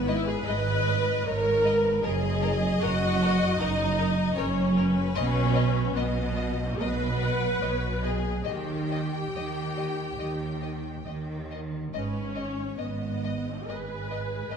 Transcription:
Already playing: G#1 G#2 B4
0.06 E4 D#5
0.26 G#4
0.46 G#1 G#2 B4 D#5
0.87 D#5
1.25 G#1 G#2 A#4 C#5 D#5
1.65 B4 D#5
2.03 F#1 F#2 G#4 A#4 D#5
2.42 A#4
2.82 F#1 F#2 F#4 A#4
3.23 A#4
3.60 F#1 F#2 D#4 A#4
3.98 A#4
4.36 F#1 F#2 C#4 A#4 C#5
4.76 A#4 B4
5.15 B1 B2 C#4 D#5
5.55 D#5
5.94 B1 B2 B3 D#5
6.36 D#5
6.78 B1 B2 B4 D#5
7.21 D#5 F#5
7.61 B1 B2 C#5 D#5
8.02 G#4 D#5
8.44 D#2 D#3 G4 D#5
8.49 G5
8.91 D#5
9.32 D#2 D#3 D#5
9.77 D#5
10.17 D#2 D#3 D#5
10.62 D#5
11.05 D#2 D#3 D#5
11.50 D#5
11.93 G#1 G#2 C#4 B4 D#5
12.35 C#5 D#5
12.77 G#1 G#2 B3 D#5
13.23 D#5
13.66 G#1 G#2 G#4 B4 D#5
14.10 D#5
14.48 G#1 G#2 A#4 D#5

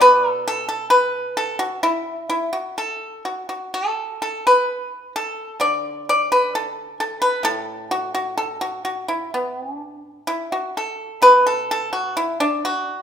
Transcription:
0.01 B2 B4
0.29 A4
0.48 A4
0.69 A4
0.90 B4
1.37 A4
1.59 F#4
1.83 E4
2.30 E4
2.53 F#4
2.78 A4
3.25 F#4
3.49 F#4
3.74 A4
4.22 A4
4.47 B4
5.16 A4
5.60 D3 D5
6.09 D5
6.32 B4
6.55 A4
7.00 A4
7.22 B4
7.43 A2 A4
7.91 F#4
8.15 F#4
8.38 A4
8.61 F#4
8.85 F#4
9.08 E4
9.34 B3
9.56 C4
9.78 D4
10.27 E4
10.52 F#4
10.77 A4
11.22 B2 B4
11.47 A4
11.71 A4
11.93 F#4
12.17 E4
12.40 D4
12.65 F#4

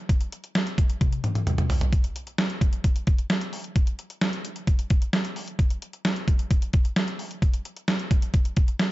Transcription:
0.09 kick, closed hi-hat
0.21 closed hi-hat
0.32 closed hi-hat
0.44 closed hi-hat
0.55 snare, closed hi-hat
0.67 closed hi-hat
0.78 kick, closed hi-hat
0.90 closed hi-hat
1.01 kick, closed hi-hat, high tom
1.12 closed hi-hat
1.24 closed hi-hat, mid tom
1.35 closed hi-hat, mid tom
1.47 closed hi-hat, mid tom
1.58 closed hi-hat, mid tom
1.70 floor tom, open hi-hat
1.81 closed hi-hat, floor tom
1.93 kick, closed hi-hat
2.04 closed hi-hat
2.16 closed hi-hat
2.27 closed hi-hat
2.38 snare, closed hi-hat
2.50 closed hi-hat
2.61 kick, closed hi-hat
2.73 closed hi-hat
2.84 kick, closed hi-hat
2.96 closed hi-hat
3.07 kick, closed hi-hat
3.18 closed hi-hat
3.30 snare, closed hi-hat
3.41 closed hi-hat
3.53 open hi-hat
3.64 closed hi-hat
3.76 kick, closed hi-hat
3.87 closed hi-hat
3.99 closed hi-hat
4.10 closed hi-hat
4.21 snare, closed hi-hat
4.33 closed hi-hat
4.45 closed hi-hat
4.56 closed hi-hat
4.67 kick, closed hi-hat
4.79 closed hi-hat
4.90 kick, closed hi-hat
5.02 closed hi-hat
5.13 snare, closed hi-hat
5.25 closed hi-hat
5.36 open hi-hat
5.48 closed hi-hat
5.59 kick, closed hi-hat
5.70 closed hi-hat
5.82 closed hi-hat
5.93 closed hi-hat
6.05 snare, closed hi-hat
6.16 closed hi-hat
6.28 kick, closed hi-hat
6.39 closed hi-hat
6.51 kick, closed hi-hat
6.62 closed hi-hat
6.73 kick, closed hi-hat
6.85 closed hi-hat
6.96 snare, closed hi-hat
7.08 closed hi-hat
7.19 open hi-hat
7.31 closed hi-hat
7.42 kick, closed hi-hat
7.54 closed hi-hat
7.65 closed hi-hat
7.76 closed hi-hat
7.88 snare, closed hi-hat
7.99 closed hi-hat
8.11 kick, closed hi-hat
8.22 closed hi-hat
8.34 kick, closed hi-hat
8.45 closed hi-hat
8.57 kick, closed hi-hat
8.68 closed hi-hat
8.79 snare, closed hi-hat

